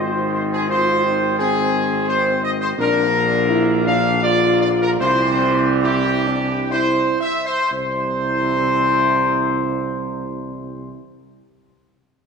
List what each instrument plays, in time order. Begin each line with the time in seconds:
Already playing: tuba G#1, trombone section D#3 C4
0.00 french horn section D#4, trumpet section C5
0.34 trumpet section C5
0.53 trumpet section G#4
0.69 french horn section F4, trumpet section C5
1.04 french horn section D#4
1.39 french horn section C4, trumpet section G#4
2.08 trumpet section C5
2.44 trumpet section D#5
2.61 trumpet section C5
2.78 tuba A#1, trombone section D3 A#3, french horn section D4, trumpet section A#4
3.49 french horn section E4
3.86 french horn section D4, trumpet section F5
4.22 french horn section F4, trumpet section D5
4.61 trumpet section D5
4.82 trumpet section A#4
5.00 tuba C2, trombone section E3 G3, french horn section E4, trumpet section C5
5.83 french horn section E4, trumpet section G4
6.25 french horn section D4
6.71 french horn section E4, trumpet section C5
7.21 trumpet section E5
7.46 trumpet section C5
7.71 tuba C2, trombone section C3 E3, french horn section G3 E4, trumpet section C5